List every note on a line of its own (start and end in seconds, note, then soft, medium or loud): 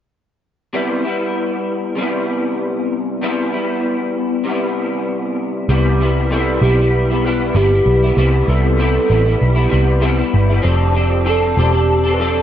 0.73 1.04 C3 medium
0.73 1.05 G3 medium
0.73 1.04 B3 medium
0.73 1.03 E4 medium
1.04 1.97 G3 soft
1.04 1.98 B3 soft
1.04 2.01 E4 soft
1.95 3.20 C3 medium
1.95 3.22 G3 medium
2.00 3.22 B3 medium
2.00 3.23 E4 medium
3.21 3.52 C3 medium
3.21 3.53 G3 medium
3.21 3.53 B3 medium
3.21 3.51 E4 medium
3.52 4.46 G3 soft
3.52 4.47 B3 soft
3.52 4.49 E4 medium
4.44 5.68 C3 medium
4.44 5.69 G3 medium
4.48 5.70 B3 medium
4.48 5.70 E4 medium
5.69 6.58 C2 medium
5.69 5.98 C3 medium
5.69 5.99 G3 medium
5.69 6.00 B3 medium
5.69 6.00 E4 medium
5.69 6.27 G4 loud
5.99 6.29 C3 medium
5.99 6.30 G3 medium
5.99 6.30 B3 medium
5.99 6.31 E4 medium
6.30 6.60 C3 medium
6.30 6.61 G3 medium
6.30 6.62 B3 medium
6.30 6.62 E4 medium
6.30 6.63 A4 loud
6.61 7.51 B1 medium
6.61 6.79 C3 soft
6.61 6.79 G3 medium
6.61 6.79 B3 medium
6.61 6.77 E4 medium
6.61 7.26 G4 medium
6.78 7.11 G3 soft
6.78 7.10 B3 soft
6.78 7.09 E4 soft
7.10 7.23 G3 soft
7.10 7.24 B3 soft
7.10 7.24 E4 soft
7.24 7.54 G3 soft
7.24 7.55 B3 soft
7.24 7.55 E4 medium
7.24 7.56 B4 loud
7.54 7.79 G1 medium
7.54 7.72 C3 medium
7.54 7.72 G3 medium
7.54 7.72 B3 medium
7.54 7.70 E4 medium
7.54 8.17 G4 medium
7.71 8.04 G3 soft
7.71 8.03 B3 soft
7.71 8.02 E4 soft
7.86 8.11 B1 medium
8.03 8.17 G3 soft
8.03 8.17 B3 soft
8.03 8.17 E4 medium
8.17 8.42 C2 medium
8.17 8.46 C3 medium
8.17 8.47 G3 medium
8.17 8.48 B3 medium
8.17 8.49 E4 medium
8.17 8.46 G4 medium
8.47 8.97 C2 medium
8.47 8.76 C3 medium
8.47 8.78 G3 medium
8.47 8.78 B3 medium
8.47 8.78 E4 medium
8.47 8.77 A4 medium
8.78 9.07 C3 medium
8.78 9.08 G3 medium
8.78 9.09 B3 medium
8.78 9.10 E4 medium
8.78 9.43 A4 loud
9.08 9.34 A1 medium
9.08 9.26 C3 medium
9.08 9.26 G3 medium
9.08 9.26 B3 medium
9.08 9.24 E4 medium
9.25 9.57 G3 soft
9.25 9.56 B3 soft
9.25 9.54 E4 soft
9.41 9.66 B1 medium
9.41 10.34 G4 medium
9.55 9.69 G3 soft
9.55 9.70 B3 soft
9.55 9.70 E4 medium
9.69 10.22 C2 medium
9.69 9.99 C3 medium
9.69 10.00 G3 medium
9.69 10.00 B3 medium
9.69 10.01 E4 medium
10.00 10.18 C3 medium
10.00 10.19 G3 medium
10.00 10.18 B3 medium
10.00 10.16 E4 medium
10.18 10.50 G3 soft
10.18 10.49 B3 soft
10.18 10.48 E4 medium
10.34 10.58 G1 medium
10.49 10.62 G3 soft
10.49 10.63 B3 soft
10.49 10.63 E4 soft
10.62 11.53 F1 medium
10.62 10.92 F3 medium
10.62 10.93 C4 medium
10.62 10.94 D4 medium
10.62 10.95 A4 medium
10.66 11.30 G4 loud
10.93 11.24 F3 medium
10.93 11.24 C4 medium
10.93 11.25 D4 medium
10.93 11.25 A4 medium
11.25 11.56 F3 medium
11.25 11.56 C4 medium
11.25 11.57 D4 medium
11.25 11.57 A4 medium
11.25 11.60 A4 loud
11.57 12.42 E1 medium
11.57 11.74 F3 medium
11.57 11.74 C4 medium
11.57 11.73 D4 medium
11.57 12.15 G4 loud
11.57 11.71 A4 medium
11.73 12.05 C4 soft
11.73 12.04 D4 soft
11.73 12.02 A4 medium
12.04 12.18 C4 soft
12.04 12.19 D4 soft
12.04 12.18 A4 soft
12.13 12.21 B4 medium
12.18 12.42 F3 soft
12.18 12.42 C4 medium
12.18 12.42 D4 medium
12.18 12.42 A4 medium